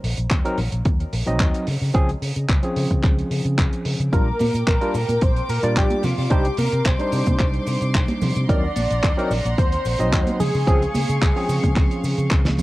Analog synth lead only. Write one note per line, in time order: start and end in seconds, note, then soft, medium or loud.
4.13 4.64 A#4 loud
4.68 5.24 A#4 loud
5.22 5.49 C5 loud
5.49 5.75 A#4 loud
5.78 6.06 G4 loud
6.04 6.31 F4 medium
6.31 6.57 G4 loud
6.59 6.88 A#4 medium
6.86 7.95 C5 loud
8.49 9.54 D5 loud
9.58 10.36 C5 loud
10.40 12.54 G#4 loud